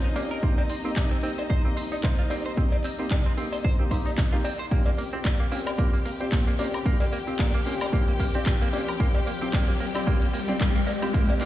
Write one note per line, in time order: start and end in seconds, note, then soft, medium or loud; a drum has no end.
0.00 0.39 A#1 medium
0.00 0.13 C4 medium
0.00 0.13 C#4 medium
0.00 4.72 D#4 medium
0.00 0.13 F4 medium
0.00 0.13 C5 loud
0.00 4.72 D#5 medium
0.04 0.08 D#4 medium
0.04 cabasa soft
0.16 0.23 A#3 medium
0.16 0.40 C4 medium
0.16 0.40 C#4 medium
0.16 0.40 F4 medium
0.16 0.40 G4 medium
0.16 open hi-hat loud
0.16 cowbell medium
0.16 cabasa medium
0.31 0.37 A#4 medium
0.31 cabasa soft
0.42 0.55 C2 medium
0.42 0.81 A#3 medium
0.42 0.81 C4 medium
0.42 0.54 C4 medium
0.42 0.81 D#4 medium
0.42 0.81 G4 medium
0.42 kick loud
0.42 cabasa soft
0.58 0.61 C4 medium
0.58 cowbell medium
0.70 0.74 C4 medium
0.70 open hi-hat loud
0.70 cabasa medium
0.84 1.20 C2 medium
0.84 1.20 A#3 medium
0.84 1.20 C4 medium
0.84 0.91 C4 medium
0.84 1.20 D#4 medium
0.84 1.21 G4 medium
0.84 cabasa soft
0.96 1.08 C3 medium
0.96 kick loud
0.96 clap loud
0.96 cowbell medium
0.96 cabasa soft
1.11 1.17 C4 medium
1.23 1.46 G1 medium
1.23 1.61 A#3 medium
1.23 1.61 C4 medium
1.23 1.31 C4 loud
1.23 1.62 D#4 medium
1.23 1.62 G4 medium
1.23 open hi-hat loud
1.23 cabasa medium
1.38 1.42 C5 medium
1.38 cowbell medium
1.38 cabasa soft
1.50 1.73 G1 medium
1.50 1.61 C5 medium
1.50 kick loud
1.50 cabasa soft
1.65 2.01 A#3 medium
1.65 1.68 C4 medium
1.65 2.01 C4 medium
1.65 2.01 D#4 medium
1.65 2.01 G4 medium
1.77 2.14 C2 medium
1.77 1.81 C5 medium
1.77 open hi-hat loud
1.77 cabasa medium
1.92 1.95 D#4 medium
1.92 cowbell medium
1.92 cabasa soft
2.03 2.08 C3 loud
2.03 2.27 A#3 medium
2.03 2.28 C4 medium
2.03 2.28 D#4 medium
2.03 2.28 C5 loud
2.03 kick loud
2.03 clap loud
2.03 cabasa soft
2.18 2.54 C2 medium
2.18 2.22 F4 medium
2.18 cabasa soft
2.30 2.54 A#3 medium
2.30 2.54 C4 medium
2.30 2.38 C4 loud
2.30 2.54 D#4 medium
2.30 2.55 G4 medium
2.30 open hi-hat loud
2.30 cowbell medium
2.30 cabasa medium
2.46 2.52 C5 loud
2.46 cabasa soft
2.57 2.70 C2 loud
2.57 2.95 A#3 medium
2.57 2.95 C4 medium
2.57 2.69 C4 medium
2.57 2.96 D#4 medium
2.57 2.96 G4 medium
2.57 kick loud
2.57 cabasa soft
2.72 2.76 C4 medium
2.72 cowbell medium
2.84 2.89 C4 medium
2.84 clap soft
2.84 open hi-hat loud
2.84 cabasa medium
2.99 3.34 C2 medium
2.99 3.35 A#3 medium
2.99 3.35 C4 medium
2.99 3.05 C4 medium
2.99 3.35 D#4 medium
2.99 3.35 G4 medium
2.99 cabasa soft
3.11 3.22 C3 medium
3.11 kick loud
3.11 clap loud
3.11 cowbell medium
3.11 cabasa soft
3.26 3.32 C4 loud
3.37 3.60 G1 medium
3.37 3.76 A#3 medium
3.37 3.45 C4 loud
3.37 3.76 C4 medium
3.37 3.76 D#4 medium
3.37 3.76 G4 medium
3.37 open hi-hat loud
3.37 cabasa medium
3.52 3.56 C5 medium
3.52 open hi-hat medium
3.52 cowbell medium
3.52 cabasa soft
3.64 3.87 G1 medium
3.64 3.76 C5 medium
3.64 kick loud
3.64 cabasa soft
3.79 3.89 A#3 medium
3.79 3.83 C4 medium
3.79 3.89 C4 medium
3.79 3.89 D#4 medium
3.79 3.89 G4 medium
3.91 4.29 C2 loud
3.91 4.29 A#3 medium
3.91 4.29 C4 medium
3.91 4.29 D#4 medium
3.91 4.30 G4 loud
3.91 3.96 C5 medium
3.91 kick medium
3.91 open hi-hat loud
3.91 cabasa medium
4.06 4.10 D#4 medium
4.06 cowbell medium
4.06 cabasa soft
4.18 4.22 C3 loud
4.18 kick loud
4.18 clap loud
4.18 cabasa soft
4.32 4.68 C2 medium
4.32 4.43 A#3 medium
4.32 4.44 C4 medium
4.32 4.44 D#4 medium
4.32 4.36 F4 medium
4.32 4.44 G4 loud
4.32 cabasa soft
4.44 4.52 C4 medium
4.44 open hi-hat loud
4.44 cowbell medium
4.44 cabasa medium
4.59 4.65 C5 loud
4.59 cabasa soft
4.71 4.84 A#1 loud
4.71 4.83 A#3 medium
4.71 5.09 C4 medium
4.71 5.10 C#4 medium
4.71 5.10 F4 medium
4.71 11.45 G4 medium
4.71 5.10 G4 medium
4.71 11.45 G5 medium
4.71 kick loud
4.71 closed hi-hat medium
4.71 riser medium
4.71 cabasa soft
4.86 4.90 A#3 medium
4.86 cowbell medium
4.98 5.03 A#3 medium
4.98 open hi-hat loud
4.98 cabasa medium
5.13 5.49 A#1 medium
5.13 5.49 C4 medium
5.13 5.19 C4 medium
5.13 5.49 F4 medium
5.13 5.49 G4 medium
5.13 closed hi-hat soft
5.13 cabasa soft
5.24 5.36 A#2 medium
5.24 kick loud
5.24 clap loud
5.24 closed hi-hat medium
5.24 cowbell medium
5.24 cabasa soft
5.40 5.46 A#3 medium
5.51 5.74 A#2 medium
5.51 5.59 A#3 medium
5.51 5.76 C4 medium
5.51 5.77 C#4 medium
5.51 5.77 F4 medium
5.51 5.77 G4 medium
5.51 open hi-hat loud
5.51 cabasa medium
5.66 5.70 A#4 medium
5.66 cowbell medium
5.66 cabasa soft
5.66 high woodblock medium
5.78 6.01 A#2 medium
5.78 5.90 A#3 medium
5.78 6.17 C4 medium
5.78 6.17 F4 medium
5.78 6.17 G4 medium
5.78 kick loud
5.78 closed hi-hat medium
5.78 cabasa soft
5.93 5.97 A#3 medium
5.93 closed hi-hat soft
6.05 6.43 A#1 medium
6.05 6.10 A#3 medium
6.05 open hi-hat loud
6.05 cabasa medium
6.20 6.56 C4 medium
6.20 6.26 C4 medium
6.20 6.56 F4 medium
6.20 6.56 G4 medium
6.20 closed hi-hat medium
6.20 cowbell medium
6.20 cabasa soft
6.32 6.44 A#2 medium
6.32 kick loud
6.32 clap loud
6.32 closed hi-hat medium
6.32 cabasa soft
6.47 6.82 A#1 medium
6.47 6.53 A#3 loud
6.47 closed hi-hat soft
6.47 cabasa soft
6.59 6.67 A#3 medium
6.59 6.84 C4 medium
6.59 6.84 C#4 medium
6.59 6.84 F4 medium
6.59 6.84 G4 medium
6.59 open hi-hat loud
6.59 cowbell medium
6.59 cabasa medium
6.74 6.78 A#4 medium
6.74 closed hi-hat soft
6.74 cabasa soft
6.74 high woodblock medium
6.85 6.98 A#1 medium
6.85 6.97 A#3 medium
6.85 7.24 C4 medium
6.85 7.24 F4 medium
6.85 7.24 G4 medium
6.85 kick loud
6.85 closed hi-hat medium
6.85 cabasa soft
7.00 7.04 A#3 medium
7.00 cowbell medium
7.12 7.17 A#3 medium
7.12 open hi-hat loud
7.12 cabasa medium
7.27 7.63 A#1 medium
7.27 7.63 C4 medium
7.27 7.33 C4 medium
7.27 7.63 F4 medium
7.27 7.63 G4 medium
7.27 closed hi-hat medium
7.27 cabasa soft
7.39 7.51 A#2 medium
7.39 kick loud
7.39 clap loud
7.39 closed hi-hat medium
7.39 cowbell medium
7.39 cabasa soft
7.54 7.60 A#3 medium
7.66 7.89 A#2 medium
7.66 7.74 A#3 medium
7.66 7.91 C4 medium
7.66 7.91 C#4 medium
7.66 7.91 F4 medium
7.66 7.91 G4 medium
7.66 open hi-hat loud
7.66 cabasa medium
7.81 7.85 A#4 medium
7.81 open hi-hat medium
7.81 cowbell medium
7.81 cabasa soft
7.81 high woodblock medium
7.92 8.16 A#2 medium
7.92 8.04 A#3 medium
7.92 8.31 C4 medium
7.92 8.31 F4 medium
7.92 8.31 G4 medium
7.92 kick loud
7.92 closed hi-hat medium
7.92 cabasa soft
8.08 8.12 A#3 medium
8.08 closed hi-hat soft
8.19 8.57 A#1 medium
8.19 8.24 A#3 medium
8.19 kick medium
8.19 open hi-hat loud
8.19 cabasa medium
8.34 8.70 C4 medium
8.34 8.41 C4 medium
8.34 8.71 F4 medium
8.34 8.71 G4 medium
8.34 closed hi-hat medium
8.34 cowbell medium
8.34 cabasa soft
8.46 8.58 A#2 medium
8.46 kick loud
8.46 clap loud
8.46 closed hi-hat medium
8.46 cabasa soft
8.61 8.97 A#1 medium
8.61 8.67 A#3 loud
8.61 closed hi-hat soft
8.61 cabasa soft
8.72 8.81 A#3 loud
8.72 8.98 C4 medium
8.72 8.98 C#4 medium
8.72 8.98 F4 medium
8.72 8.98 G4 medium
8.72 open hi-hat loud
8.72 cowbell medium
8.72 cabasa medium
8.88 8.92 A#4 medium
8.88 closed hi-hat medium
8.88 cabasa soft
8.88 high woodblock medium
8.99 9.12 C2 loud
8.99 9.11 A#3 medium
8.99 9.38 C4 medium
8.99 9.38 F4 medium
8.99 9.38 G4 medium
8.99 kick loud
8.99 closed hi-hat medium
8.99 cabasa soft
9.14 9.19 A#3 medium
9.14 cowbell medium
9.27 9.31 A#3 medium
9.27 open hi-hat loud
9.27 cabasa medium
9.41 9.77 C2 medium
9.41 9.51 C4 medium
9.41 9.48 C4 medium
9.41 9.52 F4 medium
9.41 9.52 G4 medium
9.41 closed hi-hat medium
9.41 cabasa soft
9.53 9.65 A#3 medium
9.53 9.91 C4 medium
9.53 9.92 F4 medium
9.53 9.92 G4 medium
9.53 kick loud
9.53 clap loud
9.53 closed hi-hat medium
9.53 cowbell medium
9.53 cabasa soft
9.68 9.72 A#3 medium
9.80 10.03 G1 medium
9.80 9.85 A#3 medium
9.80 open hi-hat loud
9.80 cabasa medium
9.94 10.05 C4 medium
9.94 10.01 C4 medium
9.94 10.05 F4 medium
9.94 10.05 G4 medium
9.94 closed hi-hat medium
9.94 cowbell medium
9.94 cabasa soft
9.94 high woodblock medium
10.06 10.18 A#3 medium
10.06 10.45 C4 medium
10.06 10.45 F4 medium
10.06 10.46 G4 medium
10.06 kick loud
10.06 closed hi-hat medium
10.06 cabasa soft
10.22 10.26 A#3 medium
10.22 closed hi-hat soft
10.33 10.71 C2 medium
10.33 10.38 A#3 medium
10.33 open hi-hat loud
10.33 cabasa medium
10.48 10.58 C4 medium
10.48 10.55 C4 medium
10.48 10.59 F4 medium
10.48 10.59 G4 medium
10.48 closed hi-hat medium
10.48 cowbell medium
10.48 cabasa soft
10.61 10.72 A#3 medium
10.61 10.99 F4 medium
10.61 10.99 G4 medium
10.61 kick loud
10.61 clap loud
10.61 closed hi-hat medium
10.61 cabasa soft
10.75 11.11 C2 medium
10.75 10.79 A#3 medium
10.75 closed hi-hat soft
10.75 cabasa soft
10.87 10.92 A#3 medium
10.87 open hi-hat loud
10.87 cowbell medium
10.87 cabasa medium
11.02 11.12 C4 medium
11.02 11.08 C4 medium
11.02 11.12 F4 medium
11.02 11.13 G4 loud
11.02 closed hi-hat medium
11.02 cabasa soft
11.02 high woodblock medium
11.14 11.27 C2 loud
11.14 11.25 A#3 medium
11.14 11.39 C4 medium
11.14 11.39 F4 medium
11.14 11.39 G4 medium
11.14 kick loud
11.14 closed hi-hat medium
11.14 cabasa soft
11.29 11.33 A#3 medium
11.29 cowbell medium
11.40 11.45 A#3 medium
11.40 11.45 C4 medium
11.40 11.45 F4 medium
11.40 11.45 G4 medium
11.40 clap soft
11.40 open hi-hat loud
11.40 cabasa medium